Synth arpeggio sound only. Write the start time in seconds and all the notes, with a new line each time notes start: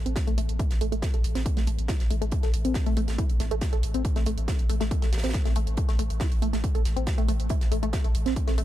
0.06 C4
0.27 A3
0.38 A3
0.59 E4
0.81 A3
0.92 A3
1.14 A4
1.35 C4
1.57 A3
1.67 A3
1.89 E4
2.10 A3
2.21 A3
2.43 A4
2.65 C4
2.86 A3
2.97 A3
3.18 E4
3.40 A3
3.51 A3
3.73 A4
3.94 C4
4.16 A3
4.26 A3
4.48 E4
4.69 A3
4.81 A3
5.02 A4
5.24 C4
5.45 A3
5.56 A3
5.88 A3
5.99 A3
6.21 E4
6.42 A3
6.53 A3
6.75 A4
6.96 C4
7.18 A3
7.28 A3
7.50 E4
7.72 A3
7.83 A3
8.04 A4
8.26 C4
8.47 A3
8.58 A3